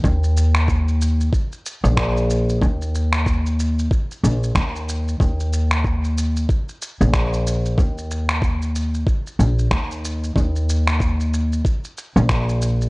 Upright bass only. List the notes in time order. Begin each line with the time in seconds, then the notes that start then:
0.04 D#2
1.84 A#1
2.62 D#2
4.24 A#1
4.55 D#2
5.20 D#2
7.01 A#1
7.78 D#2
9.39 A#1
9.71 D#2
10.36 D#2
12.16 A#1